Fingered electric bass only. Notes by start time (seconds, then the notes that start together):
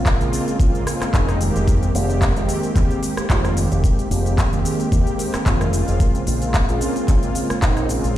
Already playing: A#1
0.21 A#1
0.60 G#1
1.01 muted fingered electric bass stroke
1.14 F1
1.56 F1
1.95 F1
2.37 F1
2.76 D#2
3.18 muted fingered electric bass stroke
3.30 F1
3.71 F1
4.11 F1
4.53 F1
4.92 D#2
5.34 muted fingered electric bass stroke
5.46 F1
5.88 F1
6.27 A#1
6.69 A#1
7.08 G#1
7.51 muted fingered electric bass stroke
7.62 A#1
8.05 A#1